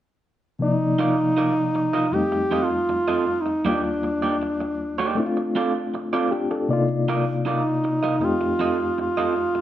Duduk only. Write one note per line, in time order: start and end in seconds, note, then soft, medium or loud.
0.61 2.16 D#4 medium
2.14 2.66 G4 medium
2.65 3.42 F4 loud
3.41 3.66 D#4 medium
3.67 5.14 D4 medium
7.47 8.25 D#4 medium
8.24 8.99 F4 medium
9.01 9.61 F4 medium